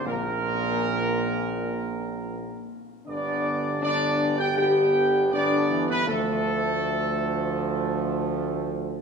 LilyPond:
<<
  \new Staff \with { instrumentName = "Trumpet section" } { \time 4/4 \key g \dorian \tempo 4 = 80 bes'2.~ bes'8 r8 | d''4 d''8. g''16 g''4 d''8. b'16 | a'2.~ a'8 r8 | }
  \new Staff \with { instrumentName = "French horn section" } { \time 4/4 \key g \dorian bes2.~ bes8 r8 | d'4 d'8. g'16 g'4 d'8. b16 | a2.~ a8 r8 | }
  \new Staff \with { instrumentName = "Trombone section" } { \clef bass \time 4/4 \key g \dorian << { bes,2.~ bes,8 r8 | b4 b4 b4 b4 | a1 | } \\ { r1 | d4 d4 d4 d8 e8 | f1 | } >> }
  \new Staff \with { instrumentName = "Tuba" } { \clef bass \time 4/4 \key g \dorian bes,,2.~ bes,,8 r8 | g,,1 | d,1 | }
>>